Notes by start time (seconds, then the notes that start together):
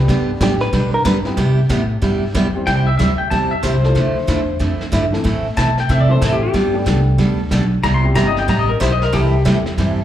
Already playing: G3 B3 D4 G4 B4
0.08 G2 D3 G3 B3 D4 G4, brush sweep, kick, snare
0.40 A2 D3 G3 B3 D4 G4, kick, snare, hi-hat pedal
0.60 B4, snare
0.73 B2 D3 G3 B3 D4 G4, brush sweep, kick, snare
0.94 A#4
1.05 G2 D3 G3 B3 D4 G4 B4, kick, snare, hi-hat pedal
1.25 B3 C4 E4 G4 B4, snare
1.37 C3 G3 B3 E4 G4, brush sweep, kick, snare
1.69 A2 C3 G3 B3 E4 G4, kick, snare, hi-hat pedal
2.02 G2 C3 G3 B3 E4 G4, brush sweep, kick, snare
2.34 E2 C3 G3 B3 E4 G4, kick, snare, hi-hat pedal
2.54 G3 C4 E4 G4 C5
2.66 C2 C3 G3 C4 E4 G4 G5, brush sweep, kick, snare
2.87 E5
2.98 D2 C3 G3 C4 E4 G4 E5, kick, snare, hi-hat pedal
3.18 G5
3.30 E2 C3 G3 C4 E4 G4 A5, brush sweep, kick, snare
3.51 E5
3.63 C2 C3 G3 C4 E4 G4 C5, kick, snare, hi-hat pedal
3.83 A3 D4 E4 F4 A4, snare
3.95 D2 D3 F3 A3 E4, brush sweep, kick, snare
4.27 E2 D3 F3 A3 E4, kick, snare, hi-hat pedal
4.59 F2 D3 F3 A3 E4, brush sweep, kick, snare
4.81 snare
4.92 G2 D3 F3 A3 E4, kick, snare, hi-hat pedal
5.12 E3 A3 C4 E4 A4, snare
5.24 A2 E3 A3 C4 E4 A4, brush sweep, kick, snare
5.57 B2 E3 A3 C4 E4 A4 A5, kick, snare, hi-hat pedal
5.78 G5, snare
5.89 C3 E3 A3 C4 E4 A4 E5, brush sweep, kick, snare
6.00 D5
6.09 E3 A3 C4 E4 A4 C5
6.21 A2 E3 A3 C4 E4 A4, kick, snare, hi-hat pedal
6.32 G4
6.43 G4
6.53 G2 G3 B3 D4 A4, brush sweep, kick, snare
6.73 G3 A3 B3 D4 G4
6.86 C2 G3 B3 D4 A4, kick, snare, hi-hat pedal
7.18 D2 G3 B3 D4 A4, brush sweep, kick, snare
7.51 B1 G3 B3 D4 A4, kick, snare, hi-hat pedal
7.83 C2 C3 G3 B3 E4 G4 A#5, brush sweep, kick, snare
7.94 C6
8.03 G3 B3 C4 E4 G4
8.15 G1 C3 G3 B3 E4 G4 A#5, kick, snare, hi-hat pedal
8.27 D#5
8.37 G5, snare
8.48 A1 C3 G3 B3 E4 G4 A#5, brush sweep, kick, snare
8.59 D#5
8.69 A#4
8.80 B1 C3 G3 B3 E4 G4 C5, kick, snare, hi-hat pedal
8.92 D#5
9.02 A#4, snare
9.12 C2 C3 E3 G3 C4 E4 G4 A4, brush sweep, kick, snare
9.24 G4
9.44 E2 C3 E3 G3 A3 C4 E4 G4 A4, kick, snare, hi-hat pedal
9.66 snare
9.78 G2 C3 E3 G3 C4 E4 A4, brush sweep, kick, snare